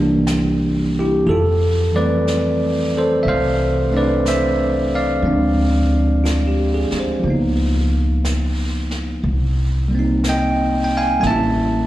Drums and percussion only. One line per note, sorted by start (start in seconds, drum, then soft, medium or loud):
0.27 brush sweep soft
0.27 snare soft
0.27 hi-hat pedal soft
1.27 brush sweep soft
2.27 brush sweep soft
2.27 snare soft
2.27 hi-hat pedal soft
3.26 brush sweep soft
4.26 brush sweep soft
4.26 snare soft
4.26 hi-hat pedal soft
5.25 brush sweep soft
6.25 brush sweep soft
6.25 snare soft
6.25 hi-hat pedal soft
6.91 snare soft
7.25 brush sweep soft
8.25 brush sweep soft
8.25 snare soft
8.25 hi-hat pedal soft
8.91 snare soft
9.24 brush sweep soft
10.24 brush sweep soft
10.24 snare soft
10.24 hi-hat pedal soft
11.22 brush sweep soft
11.22 snare soft